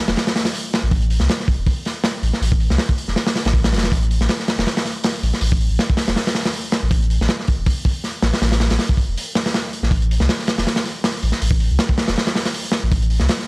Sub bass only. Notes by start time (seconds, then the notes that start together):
0.08 E1
0.83 A1
0.91 A1
1.21 C2
1.58 E1
2.23 A1
2.41 A1
2.70 C2
3.08 E1
3.45 A1
3.73 E1
3.92 A1
4.20 A1
4.58 E1
5.23 A1
5.41 A1
5.70 A1
6.08 E1
6.83 A1
6.91 A1
7.21 A1
7.58 E1
8.23 A1
8.41 A1
8.70 A1
9.08 E1
9.83 A1
9.91 A1
10.20 C2
10.58 E1
11.23 A1
11.42 A1
11.71 C2
12.08 E1
12.83 A1
12.92 A1
13.21 C2